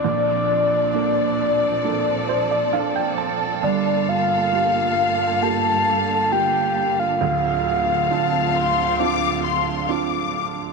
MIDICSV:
0, 0, Header, 1, 5, 480
1, 0, Start_track
1, 0, Key_signature, -1, "minor"
1, 0, Tempo, 895522
1, 26, Time_signature, 4, 2, 24, 8
1, 5750, End_track
2, 0, Start_track
2, 0, Title_t, "Violin section"
2, 0, Program_c, 0, 48
2, 4348, Note_on_c, 0, 81, 88
2, 4570, Note_off_c, 0, 81, 0
2, 4585, Note_on_c, 0, 84, 101
2, 4824, Note_on_c, 0, 86, 122
2, 4826, Note_off_c, 0, 84, 0
2, 5048, Note_off_c, 0, 86, 0
2, 5062, Note_on_c, 0, 84, 93
2, 5287, Note_off_c, 0, 84, 0
2, 5305, Note_on_c, 0, 86, 83
2, 5750, Note_off_c, 0, 86, 0
2, 5750, End_track
3, 0, Start_track
3, 0, Title_t, "Soft synth lead"
3, 0, Program_c, 1, 80
3, 0, Note_on_c, 1, 74, 97
3, 1689, Note_off_c, 1, 74, 0
3, 1950, Note_on_c, 1, 74, 88
3, 2192, Note_on_c, 1, 77, 107
3, 2200, Note_off_c, 1, 74, 0
3, 2908, Note_on_c, 1, 81, 124
3, 2916, Note_off_c, 1, 77, 0
3, 3388, Note_on_c, 1, 79, 112
3, 3396, Note_off_c, 1, 81, 0
3, 3749, Note_on_c, 1, 77, 89
3, 3757, Note_off_c, 1, 79, 0
3, 5307, Note_off_c, 1, 77, 0
3, 5750, End_track
4, 0, Start_track
4, 0, Title_t, "Felt piano"
4, 0, Program_c, 2, 0
4, 0, Control_c, 2, 64, 127
4, 23, Note_on_c, 2, 46, 72
4, 24, Note_on_c, 2, 34, 65
4, 33, Control_c, 2, 64, 0
4, 129, Control_c, 2, 64, 127
4, 504, Note_on_c, 2, 58, 49
4, 506, Note_on_c, 2, 62, 46
4, 508, Note_on_c, 2, 69, 51
4, 970, Note_off_c, 2, 58, 0
4, 972, Note_off_c, 2, 62, 0
4, 972, Note_off_c, 2, 69, 0
4, 987, Note_on_c, 2, 58, 48
4, 989, Note_on_c, 2, 62, 44
4, 991, Note_on_c, 2, 69, 58
4, 1227, Note_on_c, 2, 72, 64
4, 1338, Note_off_c, 2, 72, 0
4, 1347, Note_on_c, 2, 74, 63
4, 1452, Note_off_c, 2, 58, 0
4, 1453, Note_off_c, 2, 62, 0
4, 1454, Note_off_c, 2, 69, 0
4, 1458, Note_off_c, 2, 74, 0
4, 1462, Note_on_c, 2, 58, 49
4, 1462, Note_on_c, 2, 77, 64
4, 1463, Note_on_c, 2, 62, 45
4, 1464, Note_on_c, 2, 69, 52
4, 1576, Note_off_c, 2, 77, 0
4, 1584, Note_on_c, 2, 79, 69
4, 1697, Note_off_c, 2, 79, 0
4, 1704, Note_on_c, 2, 81, 67
4, 1923, Note_off_c, 2, 46, 0
4, 1924, Note_off_c, 2, 34, 0
4, 1928, Note_off_c, 2, 81, 0
4, 1929, Note_off_c, 2, 58, 0
4, 1930, Note_off_c, 2, 62, 0
4, 1931, Note_off_c, 2, 69, 0
4, 1945, Note_on_c, 2, 31, 69
4, 1945, Note_on_c, 2, 43, 73
4, 1953, Control_c, 2, 64, 0
4, 2035, Control_c, 2, 64, 127
4, 2425, Note_on_c, 2, 58, 52
4, 2426, Note_on_c, 2, 65, 49
4, 2427, Note_on_c, 2, 67, 56
4, 2891, Note_off_c, 2, 58, 0
4, 2891, Note_off_c, 2, 65, 0
4, 2892, Note_off_c, 2, 67, 0
4, 2903, Note_on_c, 2, 58, 56
4, 2905, Note_on_c, 2, 65, 49
4, 2907, Note_on_c, 2, 67, 60
4, 3370, Note_off_c, 2, 58, 0
4, 3371, Note_off_c, 2, 65, 0
4, 3372, Note_off_c, 2, 67, 0
4, 3383, Note_on_c, 2, 58, 47
4, 3386, Note_on_c, 2, 65, 43
4, 3388, Note_on_c, 2, 67, 53
4, 3844, Note_off_c, 2, 31, 0
4, 3844, Note_off_c, 2, 43, 0
4, 3850, Note_off_c, 2, 58, 0
4, 3852, Note_off_c, 2, 65, 0
4, 3853, Note_off_c, 2, 67, 0
4, 3864, Note_on_c, 2, 26, 69
4, 3864, Note_on_c, 2, 38, 77
4, 3874, Control_c, 2, 64, 0
4, 3972, Control_c, 2, 64, 127
4, 4343, Note_on_c, 2, 60, 47
4, 4346, Note_on_c, 2, 62, 42
4, 4347, Note_on_c, 2, 65, 55
4, 4810, Note_off_c, 2, 60, 0
4, 4812, Note_off_c, 2, 62, 0
4, 4812, Note_off_c, 2, 65, 0
4, 4821, Note_on_c, 2, 60, 51
4, 4824, Note_on_c, 2, 62, 48
4, 4825, Note_on_c, 2, 65, 61
4, 5289, Note_off_c, 2, 60, 0
4, 5291, Note_off_c, 2, 62, 0
4, 5291, Note_off_c, 2, 65, 0
4, 5300, Note_on_c, 2, 60, 47
4, 5301, Note_on_c, 2, 62, 43
4, 5304, Note_on_c, 2, 65, 51
4, 5750, Note_off_c, 2, 26, 0
4, 5750, Note_off_c, 2, 38, 0
4, 5750, Note_off_c, 2, 60, 0
4, 5750, Note_off_c, 2, 62, 0
4, 5750, Note_off_c, 2, 65, 0
4, 5750, End_track
5, 0, Start_track
5, 0, Title_t, "String section"
5, 0, Program_c, 3, 48
5, 0, Note_on_c, 3, 60, 67
5, 24, Note_on_c, 3, 74, 81
5, 27, Note_on_c, 3, 46, 81
5, 27, Note_on_c, 3, 53, 72
5, 28, Note_on_c, 3, 69, 72
5, 1926, Note_off_c, 3, 74, 0
5, 1927, Note_off_c, 3, 46, 0
5, 1927, Note_off_c, 3, 53, 0
5, 1928, Note_off_c, 3, 60, 0
5, 1948, Note_on_c, 3, 58, 75
5, 1948, Note_on_c, 3, 77, 88
5, 1949, Note_on_c, 3, 50, 80
5, 1951, Note_on_c, 3, 43, 80
5, 3846, Note_off_c, 3, 69, 0
5, 3848, Note_off_c, 3, 58, 0
5, 3848, Note_off_c, 3, 77, 0
5, 3849, Note_off_c, 3, 43, 0
5, 3864, Note_on_c, 3, 65, 71
5, 3865, Note_on_c, 3, 77, 88
5, 3866, Note_on_c, 3, 38, 79
5, 3866, Note_on_c, 3, 60, 71
5, 5750, Note_off_c, 3, 38, 0
5, 5750, Note_off_c, 3, 50, 0
5, 5750, Note_off_c, 3, 60, 0
5, 5750, Note_off_c, 3, 65, 0
5, 5750, Note_off_c, 3, 77, 0
5, 5750, End_track
0, 0, End_of_file